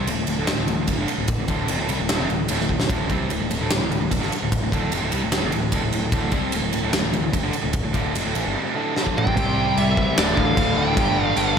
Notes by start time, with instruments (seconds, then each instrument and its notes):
0.07 picked electric bass D1, overdriven electric guitar D2 A2, ride
0.17 picked electric bass D1, overdriven electric guitar D2 A2
0.27 picked electric bass D1, overdriven electric guitar D2 A2, ride
0.37 picked electric bass D1, overdriven electric guitar D2 A2
0.47 picked electric bass D1, overdriven electric guitar D2 A2, snare, ride
0.58 picked electric bass D1, overdriven electric guitar D2 A2
0.68 picked electric bass D1, overdriven electric guitar D2 A2, ride
0.78 picked electric bass D1, overdriven electric guitar D2 A2
0.87 picked electric bass D1, overdriven electric guitar D2 A2, kick, ride
0.97 picked electric bass G1, overdriven electric guitar G2 D3
1.08 muted picked electric bass stroke, muted overdriven electric guitar stroke, muted distorted electric guitar stroke, ride
1.18 picked electric bass D1, overdriven electric guitar D2 A2
1.28 kick, ride
1.38 picked electric bass D1, overdriven electric guitar D2 A2
1.48 picked electric bass D1, overdriven electric guitar D2 A2 D3, kick, ride
1.68 picked electric bass F1, overdriven electric guitar F2 C3, ride
1.78 picked electric bass D1, overdriven electric guitar D2 A2
1.88 picked electric bass C2, overdriven electric guitar C3 G3, ride
1.99 picked electric bass D1, overdriven electric guitar D2 A2
2.09 picked electric bass D1, overdriven electric guitar D2 A2, snare, ride
2.20 picked electric bass F1, overdriven electric guitar F2 C3
2.30 picked electric bass D1, overdriven electric guitar D2 A2, ride
2.48 picked electric bass D1, overdriven electric guitar D2 A2, ride
2.60 picked electric bass D1, overdriven electric guitar D2 A2, snare
2.69 picked electric bass D1, overdriven electric guitar D2 A2, kick
2.80 picked electric bass D1, overdriven electric guitar D2 A2, snare
2.89 picked electric bass D1, overdriven electric guitar D2 A2 D3, kick, ride
3.09 picked electric bass C2, overdriven electric guitar C3 G3 C4, kick, ride
3.30 picked electric bass D1, overdriven electric guitar D2 A2, ride
3.41 picked electric bass D1, overdriven electric guitar D2 A2
3.51 picked electric bass D1, overdriven electric guitar D2 A2, ride
3.60 picked electric bass D1, overdriven electric guitar D2 A2
3.70 picked electric bass D1, overdriven electric guitar D2 A2, snare, ride
3.82 picked electric bass D1, overdriven electric guitar D2 A2
3.92 picked electric bass D1, overdriven electric guitar D2 A2, ride
4.01 picked electric bass D1, overdriven electric guitar D2 A2
4.10 picked electric bass D1, overdriven electric guitar D2 A2, kick, ride
4.21 picked electric bass G1, overdriven electric guitar G2 D3, snare
4.31 muted distorted electric guitar stroke, muted overdriven electric guitar stroke, muted picked electric bass stroke, ride
4.42 picked electric bass D1, overdriven electric guitar D2 A2
4.52 kick, ride
4.61 picked electric bass D1, overdriven electric guitar D2 A2
4.72 picked electric bass D1, overdriven electric guitar D2 A2 D3, kick, ride
4.91 picked electric bass F1, overdriven electric guitar F2 C3, ride
5.02 picked electric bass D1, overdriven electric guitar D2 A2
5.12 picked electric bass C2, overdriven electric guitar C3 G3, ride
5.23 picked electric bass D1, overdriven electric guitar D2 A2
5.32 picked electric bass D1, overdriven electric guitar D2 A2, snare, ride
5.43 picked electric bass F1, overdriven electric guitar F2 C3
5.52 picked electric bass D1, overdriven electric guitar D2 A2, ride
5.72 picked electric bass D1, overdriven electric guitar D2 A2, kick, ride
5.83 picked electric bass D1, overdriven electric guitar D2 A2
5.92 picked electric bass D1, overdriven electric guitar D2 A2, ride
6.03 picked electric bass D1, overdriven electric guitar D2 A2
6.12 picked electric bass D1, overdriven electric guitar D2 A2 D3, kick, ride
6.32 picked electric bass C2, overdriven electric guitar C3 G3 C4, kick, ride
6.52 picked electric bass D1, overdriven electric guitar D2 A2, ride
6.62 picked electric bass D1, overdriven electric guitar D2 A2
6.72 picked electric bass D1, overdriven electric guitar D2 A2, ride
6.82 picked electric bass D1, overdriven electric guitar D2 A2
6.92 picked electric bass D1, overdriven electric guitar D2 A2, snare, ride
7.03 picked electric bass D1, overdriven electric guitar D2 A2
7.12 picked electric bass D1, overdriven electric guitar D2 A2, ride
7.22 picked electric bass D1, overdriven electric guitar D2 A2
7.32 picked electric bass D1, overdriven electric guitar D2 A2, kick, ride
7.42 picked electric bass G1, overdriven electric guitar G2 D3
7.53 muted picked electric bass stroke, muted overdriven electric guitar stroke, muted distorted electric guitar stroke, ride
7.64 picked electric bass D1, overdriven electric guitar D2 A2
7.73 kick, ride
7.83 picked electric bass D1, overdriven electric guitar D2 A2
7.94 picked electric bass D1, overdriven electric guitar D2 A2 D3, kick, ride
8.15 picked electric bass F1, overdriven electric guitar F2 C3, ride
8.25 picked electric bass D1, overdriven electric guitar D2 A2
8.35 picked electric bass A1, overdriven electric guitar A2 E3, ride
8.45 picked electric bass G1, overdriven electric guitar G2 D3
8.55 overdriven electric guitar C3 G3
8.65 overdriven electric guitar F2 C3
8.75 overdriven electric guitar D2 A2 D3
8.96 overdriven electric guitar G2 D3 G3, snare
9.07 kick
9.17 overdriven electric guitar D2 A2, lead electric guitar G5, mid tom
9.27 overdriven electric guitar F2 C3, kick
9.35 picked electric bass C2, overdriven electric guitar C3 G3 C4, tonewheel organ C4 G4 D5, kick, crash
9.77 picked electric bass C2, lead electric guitar E5, crash
9.97 picked electric bass C2, kick
10.16 picked electric bass D1, overdriven electric guitar D2 A2 D3, tonewheel organ D4 A4 F5, lead electric guitar D5, snare, crash
10.37 picked electric bass D1, lead electric guitar F5, kick
10.57 picked electric bass D1, kick, crash
10.77 picked electric bass D1, lead electric guitar G5
10.97 picked electric bass G1, overdriven electric guitar G2 D3 G3, tonewheel organ G3, kick, crash
11.25 lead electric guitar F5
11.36 picked electric bass G1, lead electric guitar F5, crash